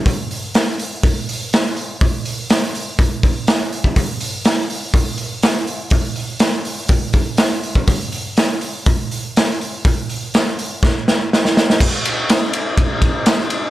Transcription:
\new DrumStaff \with { instrumentName = "Drums" } \drummode { \time 4/4 \tempo 4 = 123 <hho bd>8 hho8 <hho sn>8 hho8 <hho bd>8 hho8 <hho sn>8 hho8 | <hho bd>8 hho8 <hho sn>8 hho8 <hho bd>8 <hho bd>8 <hho sn>8 hho16 bd16 | <hho bd>8 hho8 <hho sn>8 hho8 <hho bd>8 hho8 <hho sn>8 hho8 | <hho bd>8 hho8 <hho sn>8 hho8 <hho bd>8 <hho bd>8 <hho sn>8 hho16 bd16 |
<hho bd>8 hho8 <hho sn>8 hho8 <hho bd>8 hho8 <hho sn>8 hho8 | <hho bd>8 hho8 <hho sn>8 hho8 <bd sn>8 sn8 sn16 sn16 sn16 sn16 | <cymc bd>8 cymr8 <cymr sn>8 cymr8 <bd cymr>8 <bd cymr>8 <cymr sn>8 cymr8 | }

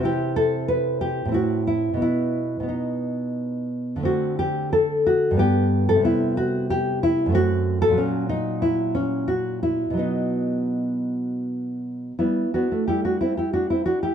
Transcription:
\new Staff \with { instrumentName = "Nylon-string guitar" } { \time 3/4 \key e \minor \tempo 4 = 90 << { g'8 a'8 b'8 g'8 fis'8 e'8 | e'4 dis'4. r8 | fis'8 g'8 a'8 fis'8 g'8. a'16 | e'8 fis'8 g'8 e'8 fis'8. a'16 |
cis'8 dis'8 e'8 cis'8 fis'8 e'8 | dis'2~ dis'8 r8 | <b e'>8 <d' fis'>8 <e' g'>16 <d' fis'>16 <c' e'>16 <e' g'>16 <d' fis'>16 <c' e'>16 <d' fis'>16 <e' g'>16 | } \\ { <c c' e'>2 <a, c' e'>4 | <b, b>4 <b, b>2 | <d a c'>2 <g, g b>4 | <c g b>2 <fis, a c'>4 |
<ais, fis>2. | <b, fis b>2. | g8 b16 a16 g2 | } >> }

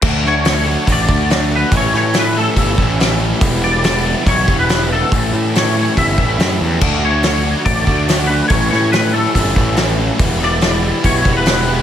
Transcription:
<<
  \new Staff \with { instrumentName = "Clean electric guitar" } { \time 4/4 \key a \mixolydian \tempo 4 = 142 r8 cis''4. d''4. b'8 | cis''8 cis''8 b'8 a'2 r8 | r8 d''4. cis''8. b'8. a'8~ | a'4 cis''4 e''4. r8 |
r8 cis''4. d''4. b'8 | cis''8 cis''8 b'8 a'2 r8 | r8 d''4. cis''8. b'16 b'4 | }
  \new Staff \with { instrumentName = "Distorted electric guitar" } { \time 4/4 \key a \mixolydian <d a d' fis'>8 <d a d' fis'>8 <d a d' fis'>8 <d a d' fis'>8 <d a d' fis'>8 <d a d' fis'>8 <d a d' fis'>8 <d a d' fis'>8 | <a, e a cis' e'>8 <a, e a cis' e'>8 <a, e a cis' e'>8 <a, e a cis' e'>8 <a, e a cis' e'>8 <a, e a cis' e'>8 <a, e a cis' e'>8 <a, e a cis' e'>8 | <e g b e'>8 <e g b e'>8 <e g b e'>8 <e g b e'>8 <e g b e'>8 <e g b e'>8 <e g b e'>8 <e g b e'>8 | <a, e a cis' e'>8 <a, e a cis' e'>8 <a, e a cis' e'>8 <a, e a cis' e'>8 <a, e a cis' e'>8 <a, e a cis' e'>8 <a, e a cis' e'>8 <a, e a cis' e'>8 |
<d a d' fis'>8 <d a d' fis'>8 <d a d' fis'>8 <d a d' fis'>8 <d a d' fis'>8 <d a d' fis'>8 <d a d' fis'>8 <d a d' fis'>8 | <a, e a cis' e'>8 <a, e a cis' e'>8 <a, e a cis' e'>8 <a, e a cis' e'>8 <a, e a cis' e'>8 <a, e a cis' e'>8 <a, e a cis' e'>8 <a, e a cis' e'>8 | <e g b e'>8 <e g b e'>8 <e g b e'>8 <e g b e'>8 <e g b e'>8 <e g b e'>8 <e g b e'>8 <e g b e'>8 | }
  \new Staff \with { instrumentName = "Overdriven electric guitar" } { \clef bass \time 4/4 \key a \mixolydian <d a d' fis'>8 <d a d' fis'>8 <d a d' fis'>8 <d a d' fis'>8 <d a d' fis'>8 <d a d' fis'>8 <d a d' fis'>8 <d a d' fis'>8 | <a, e g cis' e'>8 <a, e g cis' e'>8 <a, e g cis' e'>8 <a, e g cis' e'>8 <a, e g cis' e'>8 <a, e g cis' e'>8 <a, e g cis' e'>8 <a, e g cis' e'>8 | <e, b, e g b e'>8 <e, b, e g b e'>8 <e, b, e g b e'>8 <e, b, e g b e'>8 <e, b, e g b e'>8 <e, b, e g b e'>8 <e, b, e g b e'>8 <e, b, e g b e'>8 | <a, e g cis' e'>8 <a, e g cis' e'>8 <a, e g cis' e'>8 <a, e g cis' e'>8 <a, e g cis' e'>8 <a, e g cis' e'>8 <a, e g cis' e'>8 <a, e g cis' e'>8 |
<d a d' fis'>8 <d a d' fis'>8 <d a d' fis'>8 <d a d' fis'>8 <d a d' fis'>8 <d a d' fis'>8 <d a d' fis'>8 <d a d' fis'>8 | <a, e g cis' e'>8 <a, e g cis' e'>8 <a, e g cis' e'>8 <a, e g cis' e'>8 <a, e g cis' e'>8 <a, e g cis' e'>8 <a, e g cis' e'>8 <a, e g cis' e'>8 | <e, b, e g b e'>8 <e, b, e g b e'>8 <e, b, e g b e'>8 <e, b, e g b e'>8 <e, b, e g b e'>8 <e, b, e g b e'>8 <e, b, e g b e'>8 <e, b, e g b e'>8 | }
  \new Staff \with { instrumentName = "Picked electric bass" } { \clef bass \time 4/4 \key a \mixolydian d,2 a,,8 d,4. | a,,8 a,4. g,,8 a,,4. | e,,2 b,,8 e,,4. | a,,8 a,4. g,,8 a,,8 fis,8 e,8 |
d,2 a,,8 d,4. | a,,8 a,4. g,,8 a,,4. | e,,2 b,,8 e,,4. | }
  \new DrumStaff \with { instrumentName = "Drums" } \drummode { \time 4/4 <cymc bd>8 sn8 <hho sn>4 <hho bd>8 bd8 <hho sn>4 | <hho bd>8 sn8 <hho sn>4 <hho bd>8 bd8 <hho sn>4 | <hho bd>4 <hho sn>4 <hho bd>8 bd8 <hho sn>4 | <hho bd>4 <hho sn>4 <hho bd>8 bd8 <hho sn>4 |
<cymc bd>4 <hho sn>4 <hho bd>8 bd8 <hho sn>4 | <hho bd>8 sn8 <hho sn>4 <hho bd>8 bd8 <hho sn>4 | <hho bd>8 sn8 <hho sn>4 <hho bd>8 bd8 <hho sn>4 | }
>>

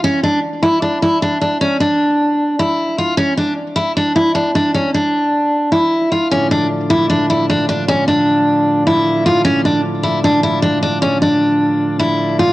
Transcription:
<<
  \new Staff \with { instrumentName = "Steel-string acoustic guitar" } { \time 4/4 \key d \minor \tempo 4 = 153 cis'8 d'8 r8 e'8 d'8 e'8 d'8 d'8 | cis'8 d'2 e'4 f'8 | cis'8 d'8 r8 e'8 d'8 e'8 d'8 d'8 | cis'8 d'2 e'4 f'8 |
cis'8 d'8 r8 e'8 d'8 e'8 d'8 d'8 | cis'8 d'2 e'4 f'8 | cis'8 d'8 r8 e'8 d'8 e'8 d'8 d'8 | cis'8 d'2 e'4 f'8 | }
  \new Staff \with { instrumentName = "Pipe organ" } { \time 4/4 \key d \minor r1 | r1 | r1 | r1 |
d'1~ | d'1 | d'1~ | d'1 | }
  \new Staff \with { instrumentName = "Pipe organ" } { \clef bass \time 4/4 \key d \minor r1 | r1 | r1 | r1 |
<a, d f>1~ | <a, d f>1~ | <a, d f>1~ | <a, d f>1 | }
>>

